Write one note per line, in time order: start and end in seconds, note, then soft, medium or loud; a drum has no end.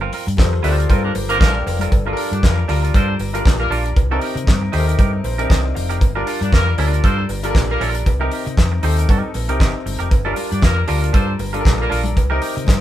0.01 0.12 C4 medium
0.01 0.12 F4 medium
0.01 0.13 A#4 loud
0.12 0.28 C4 medium
0.12 0.27 F4 medium
0.12 0.26 A#4 medium
0.12 open hi-hat medium
0.12 muted conga soft
0.27 0.40 G2 loud
0.27 muted clean electric guitar stroke soft
0.27 closed hi-hat soft
0.37 0.59 F2 loud
0.37 0.57 G3 medium
0.37 0.58 F4 medium
0.37 0.58 A4 medium
0.37 0.58 A#4 medium
0.37 0.58 C5 loud
0.37 muted clean electric guitar stroke soft
0.37 kick loud
0.37 snare loud
0.37 clap medium
0.37 closed hi-hat medium
0.37 cowbell medium
0.37 high conga medium
0.53 muted clean electric guitar stroke soft
0.63 0.84 D2 medium
0.63 0.73 F3 medium
0.63 0.83 G3 medium
0.63 0.73 A3 medium
0.63 0.78 C4 medium
0.63 0.73 D4 medium
0.63 0.83 F4 medium
0.63 0.78 F4 medium
0.63 0.83 A4 medium
0.63 0.73 A4 medium
0.63 0.83 A#4 medium
0.63 0.77 C5 loud
0.63 0.84 D5 medium
0.63 open hi-hat medium
0.78 0.88 C4 medium
0.78 0.89 F4 medium
0.78 0.90 A#4 medium
0.78 closed hi-hat soft
0.88 1.10 G2 loud
0.88 1.28 G3 medium
0.88 1.08 C4 medium
0.88 1.28 F4 medium
0.88 1.03 F4 loud
0.88 1.28 A4 medium
0.88 1.28 A#4 medium
0.88 1.02 A#4 loud
0.88 1.29 C5 loud
0.88 kick loud
0.88 closed hi-hat medium
0.88 cowbell medium
0.88 muted conga medium
1.03 1.11 F3 medium
1.03 1.11 A#3 medium
1.03 1.11 D4 medium
1.03 1.11 A#4 medium
1.03 muted clean electric guitar stroke soft
1.15 1.41 G1 loud
1.15 muted clean electric guitar stroke soft
1.15 open hi-hat medium
1.15 cowbell medium
1.15 muted conga medium
1.29 1.37 F3 loud
1.29 1.37 A#3 loud
1.29 1.40 C4 soft
1.29 1.37 D4 medium
1.29 1.40 F4 soft
1.29 1.41 A#4 soft
1.29 1.37 A#4 loud
1.29 closed hi-hat medium
1.40 1.61 A#1 medium
1.40 1.78 F3 loud
1.40 1.78 A#3 loud
1.40 1.59 C4 medium
1.40 1.78 D4 medium
1.40 1.55 F4 medium
1.40 1.54 A4 medium
1.40 1.78 A#4 loud
1.40 1.54 A#4 medium
1.40 1.54 D5 medium
1.40 kick loud
1.40 snare loud
1.40 clap medium
1.40 closed hi-hat medium
1.40 cowbell medium
1.40 high conga medium
1.55 1.66 D5 medium
1.55 1.66 G5 medium
1.55 muted clean electric guitar stroke medium
1.66 1.87 F1 loud
1.66 1.80 C5 medium
1.66 1.80 F5 medium
1.66 muted clean electric guitar stroke soft
1.66 open hi-hat medium
1.66 cowbell medium
1.79 1.91 C4 medium
1.79 1.92 F4 medium
1.79 2.05 A4 medium
1.79 1.92 A#4 medium
1.79 2.05 D5 medium
1.79 closed hi-hat medium
1.79 high conga medium
1.92 2.12 G1 medium
1.92 muted clean electric guitar stroke soft
1.92 kick loud
1.92 closed hi-hat medium
1.92 cowbell medium
2.05 2.52 G3 medium
2.05 2.52 D4 medium
2.05 2.16 D4 medium
2.05 2.53 F4 medium
2.05 2.17 F4 medium
2.05 2.12 A4 medium
2.05 2.17 A#4 medium
2.13 2.56 A#4 loud
2.13 open hi-hat medium
2.17 2.32 D4 medium
2.17 2.32 F4 medium
2.17 2.31 A#4 medium
2.31 2.41 G2 loud
2.31 2.41 A#3 medium
2.31 2.41 D4 medium
2.31 2.41 G4 medium
2.31 2.41 D5 medium
2.31 muted clean electric guitar stroke soft
2.31 closed hi-hat soft
2.43 2.64 F2 loud
2.43 2.63 G3 loud
2.43 2.63 A#3 medium
2.43 2.63 F4 medium
2.43 2.63 A#4 loud
2.43 muted clean electric guitar stroke soft
2.43 kick loud
2.43 snare loud
2.43 clap medium
2.43 closed hi-hat medium
2.43 cowbell medium
2.58 muted clean electric guitar stroke soft
2.68 2.89 D2 medium
2.68 3.16 G3 medium
2.68 2.83 D4 medium
2.68 3.16 D4 medium
2.68 2.83 F4 medium
2.68 3.16 F4 medium
2.68 3.17 A#4 medium
2.68 2.82 A#4 medium
2.68 open hi-hat medium
2.83 2.94 D4 soft
2.83 2.95 F4 medium
2.83 2.95 A#4 medium
2.83 closed hi-hat soft
2.94 3.15 G2 medium
2.94 3.15 C4 loud
2.94 3.13 D4 medium
2.94 3.09 F4 loud
2.94 3.15 A4 medium
2.94 3.08 A#4 medium
2.94 3.14 C5 loud
2.94 kick loud
2.94 closed hi-hat medium
2.94 cowbell medium
3.09 muted clean electric guitar stroke medium
3.19 3.40 G1 medium
3.19 muted clean electric guitar stroke soft
3.19 open hi-hat medium
3.19 cowbell medium
3.33 3.89 G3 medium
3.33 3.90 D4 medium
3.33 3.45 D4 soft
3.33 3.90 F4 medium
3.33 3.45 F4 medium
3.33 3.46 A#4 medium
3.33 3.90 A#4 loud
3.33 closed hi-hat soft
3.45 3.66 A#1 loud
3.45 muted clean electric guitar stroke soft
3.45 kick loud
3.45 snare loud
3.45 clap medium
3.45 closed hi-hat medium
3.45 cowbell medium
3.60 3.80 G3 medium
3.60 3.80 A#3 medium
3.60 3.80 F4 medium
3.60 3.80 A#4 loud
3.60 muted clean electric guitar stroke soft
3.70 3.91 A#1 loud
3.70 3.89 D4 medium
3.70 3.85 F4 medium
3.70 3.84 A#4 medium
3.70 open hi-hat medium
3.85 muted clean electric guitar stroke soft
3.85 closed hi-hat soft
3.96 4.17 C2 medium
3.96 muted clean electric guitar stroke soft
3.96 kick loud
3.96 closed hi-hat medium
3.96 cowbell medium
4.10 4.57 C3 medium
4.10 4.57 C4 medium
4.10 4.57 D#4 medium
4.10 4.21 D#4 medium
4.10 4.22 G4 medium
4.10 4.22 A#4 medium
4.10 4.58 A#4 loud
4.21 4.37 D#4 medium
4.21 4.36 G4 medium
4.21 4.35 A#4 medium
4.21 open hi-hat medium
4.35 4.45 C3 loud
4.35 muted clean electric guitar stroke soft
4.35 closed hi-hat soft
4.47 4.68 G2 loud
4.47 muted clean electric guitar stroke soft
4.47 kick loud
4.47 snare loud
4.47 clap medium
4.47 closed hi-hat medium
4.47 cowbell medium
4.61 muted clean electric guitar stroke soft
4.72 4.94 D#2 medium
4.72 5.20 C3 medium
4.72 5.21 C4 medium
4.72 4.88 D#4 medium
4.72 5.21 D#4 medium
4.72 4.87 G4 loud
4.72 4.80 A4 medium
4.72 4.87 C5 loud
4.72 open hi-hat medium
4.80 5.24 A#4 loud
4.88 4.97 D#4 medium
4.88 4.98 G4 medium
4.88 4.99 A#4 medium
4.88 closed hi-hat soft
4.99 5.20 G2 medium
4.99 5.17 D#4 medium
4.99 5.13 G4 medium
4.99 5.12 A#4 loud
4.99 kick loud
4.99 closed hi-hat medium
4.99 cowbell medium
5.13 muted clean electric guitar stroke soft
5.24 5.45 A#1 medium
5.24 5.48 C5 medium
5.24 muted clean electric guitar stroke soft
5.24 open hi-hat medium
5.24 cowbell medium
5.38 5.94 C3 medium
5.38 5.95 C4 medium
5.38 5.44 D4 medium
5.38 5.48 D#4 soft
5.38 5.49 G4 medium
5.38 5.49 A#4 medium
5.38 5.95 A#4 loud
5.38 closed hi-hat medium
5.45 5.98 D#4 medium
5.45 5.68 D#4 medium
5.50 5.71 C2 loud
5.50 5.64 G4 medium
5.50 5.63 A#4 medium
5.50 5.74 D#5 medium
5.50 kick loud
5.50 snare loud
5.50 clap medium
5.50 closed hi-hat medium
5.50 cowbell medium
5.64 muted clean electric guitar stroke soft
5.75 6.01 F1 medium
5.75 5.99 F5 medium
5.75 muted clean electric guitar stroke soft
5.75 open hi-hat medium
5.89 6.00 D#4 soft
5.89 6.01 G4 medium
5.89 6.00 A#4 medium
5.89 closed hi-hat soft
6.01 6.22 G1 loud
6.01 muted clean electric guitar stroke soft
6.01 kick loud
6.01 closed hi-hat medium
6.01 cowbell medium
6.15 6.62 G3 medium
6.15 6.62 D4 medium
6.15 6.25 D4 medium
6.15 6.62 F4 medium
6.15 6.26 F4 medium
6.15 6.27 A#4 medium
6.15 6.63 A#4 loud
6.26 6.42 D4 medium
6.26 6.41 F4 medium
6.26 6.40 A#4 medium
6.26 open hi-hat medium
6.41 6.50 G2 loud
6.41 6.50 A#3 medium
6.41 6.50 D4 medium
6.41 6.50 G4 medium
6.41 6.50 D5 medium
6.41 muted clean electric guitar stroke soft
6.41 closed hi-hat soft
6.52 6.73 F2 loud
6.52 6.73 G3 loud
6.52 6.73 A#3 loud
6.52 6.73 F4 loud
6.52 6.73 A#4 loud
6.52 muted clean electric guitar stroke soft
6.52 kick loud
6.52 snare loud
6.52 clap medium
6.52 closed hi-hat medium
6.52 cowbell medium
6.67 muted clean electric guitar stroke medium
6.77 6.99 D2 medium
6.77 7.25 G3 medium
6.77 7.25 D4 medium
6.77 6.93 D4 medium
6.77 7.26 F4 medium
6.77 6.92 F4 loud
6.77 7.26 A#4 medium
6.77 6.92 A#4 medium
6.77 open hi-hat medium
6.93 7.03 D4 medium
6.93 7.03 F4 medium
6.93 7.04 A#4 medium
6.93 closed hi-hat soft
7.04 7.25 G2 loud
7.04 7.24 C4 medium
7.04 7.22 D4 medium
7.04 7.19 F4 loud
7.04 7.24 A4 loud
7.04 7.17 A#4 loud
7.04 7.24 C5 loud
7.04 kick loud
7.04 closed hi-hat medium
7.04 cowbell medium
7.18 muted clean electric guitar stroke soft
7.29 7.50 G1 loud
7.29 muted clean electric guitar stroke soft
7.29 open hi-hat medium
7.29 cowbell medium
7.43 7.99 G3 loud
7.43 7.99 D4 medium
7.43 7.54 D4 soft
7.43 8.00 F4 medium
7.43 7.55 F4 medium
7.43 7.49 A4 medium
7.43 7.56 A#4 medium
7.43 closed hi-hat medium
7.50 8.03 A#4 loud
7.55 7.76 A#1 loud
7.55 muted clean electric guitar stroke soft
7.55 kick loud
7.55 snare loud
7.55 clap medium
7.55 closed hi-hat medium
7.55 cowbell medium
7.70 7.90 G3 medium
7.70 7.90 A#3 medium
7.70 7.90 F4 loud
7.70 7.90 A#4 loud
7.70 muted clean electric guitar stroke soft
7.81 8.01 A#1 loud
7.81 8.01 D4 medium
7.81 7.95 F4 medium
7.81 7.94 A#4 medium
7.81 open hi-hat medium
7.95 muted clean electric guitar stroke soft
7.95 closed hi-hat medium
8.06 8.27 C2 loud
8.06 muted clean electric guitar stroke soft
8.06 kick loud
8.06 closed hi-hat medium
8.06 cowbell medium
8.19 8.66 C3 medium
8.19 8.67 C4 medium
8.19 8.67 D#4 medium
8.19 8.31 D#4 medium
8.19 8.32 G4 medium
8.19 8.67 A#4 medium
8.19 8.32 A#4 loud
8.31 8.47 D#4 medium
8.31 8.46 G4 medium
8.31 8.45 A#4 medium
8.31 open hi-hat medium
8.47 8.56 C3 loud
8.47 muted clean electric guitar stroke soft
8.47 closed hi-hat soft
8.57 8.78 F2 medium
8.57 muted clean electric guitar stroke soft
8.57 kick loud
8.57 snare loud
8.57 clap medium
8.57 closed hi-hat medium
8.57 cowbell medium
8.72 muted clean electric guitar stroke soft
8.82 9.04 D#2 medium
8.82 9.30 C3 medium
8.82 9.30 C4 medium
8.82 9.31 D#4 medium
8.82 8.99 D#4 medium
8.82 8.98 G4 medium
8.82 9.31 A4 medium
8.82 8.98 C5 medium
8.82 open hi-hat medium
8.99 9.08 D#4 medium
8.99 9.08 G4 medium
8.99 9.09 A#4 medium
8.99 closed hi-hat medium
9.09 9.21 G2 loud
9.09 9.30 D#4 medium
9.09 9.24 G4 medium
9.09 9.23 A#4 loud
9.09 kick loud
9.09 closed hi-hat medium
9.09 cowbell medium
9.24 muted clean electric guitar stroke soft
9.34 9.49 A#1 medium
9.34 muted clean electric guitar stroke soft
9.34 open hi-hat medium
9.34 cowbell medium
9.48 9.58 C2 medium
9.48 10.04 C3 medium
9.48 10.04 C4 medium
9.48 10.05 D#4 medium
9.48 9.59 D#4 soft
9.48 9.59 G4 medium
9.48 9.60 A#4 medium
9.48 9.58 A#4 medium
9.48 closed hi-hat medium
9.59 9.72 G1 medium
9.59 9.78 D#4 medium
9.59 9.74 G4 medium
9.59 10.07 A#4 medium
9.59 9.73 A#4 medium
9.59 kick loud
9.59 snare loud
9.59 clap loud
9.59 closed hi-hat medium
9.59 cowbell medium
9.74 muted clean electric guitar stroke soft
9.86 9.97 G1 loud
9.86 muted clean electric guitar stroke soft
9.86 open hi-hat medium
9.99 10.11 F1 medium
9.99 10.10 D#4 medium
9.99 10.10 G4 medium
9.99 10.10 A#4 medium
9.99 closed hi-hat soft
10.10 10.32 G1 loud
10.10 muted clean electric guitar stroke soft
10.10 kick loud
10.10 closed hi-hat medium
10.10 cowbell medium
10.25 10.72 G3 medium
10.25 10.72 D4 medium
10.25 10.35 D4 medium
10.25 10.72 F4 medium
10.25 10.35 F4 medium
10.25 10.36 A#4 medium
10.25 10.73 A#4 loud
10.36 10.52 D4 medium
10.36 10.50 F4 medium
10.36 10.49 A#4 medium
10.36 open hi-hat medium
10.36 muted conga soft
10.51 10.61 G2 loud
10.51 10.60 A#3 medium
10.51 10.60 D4 medium
10.51 10.60 G4 medium
10.51 10.60 D5 medium
10.51 muted clean electric guitar stroke soft
10.51 closed hi-hat soft
10.62 10.83 F2 loud
10.62 10.83 G3 medium
10.62 10.83 A#3 loud
10.62 10.83 F4 medium
10.62 10.83 A#4 loud
10.62 muted clean electric guitar stroke soft
10.62 kick loud
10.62 snare loud
10.62 clap medium
10.62 closed hi-hat medium
10.62 cowbell medium
10.62 high conga medium
10.76 muted clean electric guitar stroke medium
10.87 11.09 D2 medium
10.87 11.35 G3 medium
10.87 11.36 D4 medium
10.87 11.02 D4 medium
10.87 11.36 F4 medium
10.87 11.01 F4 medium
10.87 11.36 A#4 medium
10.87 11.00 A#4 loud
10.87 open hi-hat medium
11.01 11.11 D4 medium
11.01 11.12 F4 medium
11.01 11.13 A#4 medium
11.01 closed hi-hat medium
11.13 11.35 G2 medium
11.13 11.34 C4 medium
11.13 11.32 D4 medium
11.13 11.27 F4 medium
11.13 11.34 A4 loud
11.13 11.26 A#4 medium
11.13 11.34 C5 loud
11.13 kick loud
11.13 closed hi-hat medium
11.13 cowbell medium
11.13 muted conga medium
11.27 muted clean electric guitar stroke soft
11.39 11.60 G1 medium
11.39 muted clean electric guitar stroke soft
11.39 open hi-hat medium
11.39 cowbell medium
11.39 muted conga medium
11.53 12.10 G3 medium
11.53 12.10 D4 medium
11.53 11.63 D4 soft
11.53 11.64 F4 medium
11.53 12.10 F4 medium
11.53 11.60 A4 medium
11.53 11.64 A#4 medium
11.53 closed hi-hat medium
11.61 12.13 A#4 loud
11.65 11.86 A#1 loud
11.65 kick loud
11.65 snare loud
11.65 clap medium
11.65 closed hi-hat medium
11.65 cowbell medium
11.65 high conga medium
11.78 12.00 G3 medium
11.78 12.00 A#3 medium
11.78 12.00 F4 medium
11.78 12.00 A#4 loud
11.78 muted clean electric guitar stroke medium
11.90 12.12 A#1 loud
11.90 12.09 D4 medium
11.90 12.05 F4 medium
11.90 12.03 A#4 medium
11.90 open hi-hat medium
12.04 muted clean electric guitar stroke soft
12.04 closed hi-hat soft
12.04 high conga medium
12.16 12.37 C2 loud
12.16 muted clean electric guitar stroke soft
12.16 kick loud
12.16 closed hi-hat medium
12.16 cowbell medium
12.30 12.77 C3 medium
12.30 12.77 C4 medium
12.30 12.78 D#4 medium
12.30 12.40 D#4 medium
12.30 12.41 G4 medium
12.30 12.41 A#4 medium
12.30 12.78 A#4 loud
12.42 12.57 D#4 medium
12.42 12.55 G4 medium
12.42 12.55 A#4 medium
12.42 open hi-hat medium
12.42 muted conga soft
12.56 12.66 C3 loud
12.56 muted clean electric guitar stroke soft
12.56 closed hi-hat soft
12.67 12.81 G2 loud
12.67 muted clean electric guitar stroke soft
12.67 kick loud
12.67 snare loud
12.67 clap medium
12.67 closed hi-hat medium
12.67 cowbell medium
12.67 high conga medium